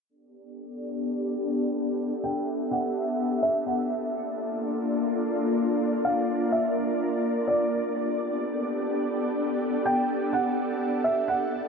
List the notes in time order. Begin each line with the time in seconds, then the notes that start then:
0.09 B3 D4 G4 A4 D5
2.00 E5
2.24 G5
2.71 F#5
3.43 E5
3.66 F#5
3.90 A#3 D4 F4 A4 D5
5.81 A#4
6.05 F5
6.52 E5
7.48 D5
7.71 B3 D4 G4 A4
9.86 G5
10.33 F#5
11.04 E5
11.28 F#5
11.52 A#3 D4 F4